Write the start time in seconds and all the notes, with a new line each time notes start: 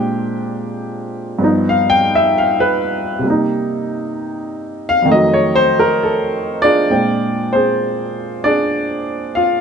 Already playing: A#2 G#3 C4 D4 G4 G5
1.39 G2 F3 B3
1.44 D#4
1.69 F5
1.90 G5
2.15 E5
2.38 F5
2.60 B4
3.19 C3
3.23 G3 A#3
3.30 D#4
4.89 F5
5.02 F2 D#3
5.09 A3 D#5
5.13 F#3
5.33 C#5
5.55 C5
5.79 A#4
6.03 A4
6.62 D4 F4 G#4 D5
6.90 A#2 G#3 C4 D4 G5
7.53 C4 G#4 C5
8.44 D4 G#4 D5
9.35 F4 F5